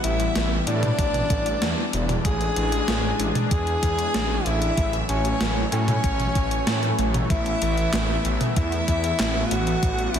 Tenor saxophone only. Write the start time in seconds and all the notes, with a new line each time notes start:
0.04 E4
0.67 D4
2.25 G#4
3.51 G#4
4.46 E4
5.09 C#4
5.72 C#4
7.30 E4
8.56 E4
9.51 F#4
10.14 E4